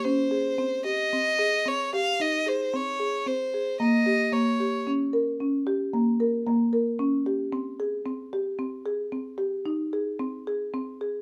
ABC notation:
X:1
M:7/4
L:1/8
Q:1/4=112
K:Dblyd
V:1 name="Violin"
c3 e3 d f e c d2 c2 | e2 d2 z8 z2 | z12 z2 |]
V:2 name="Marimba"
D A C G C A C G E A C A C A | B, G B, G D B D G B, B B, B D G | C A C G C A C G E A C A C A |]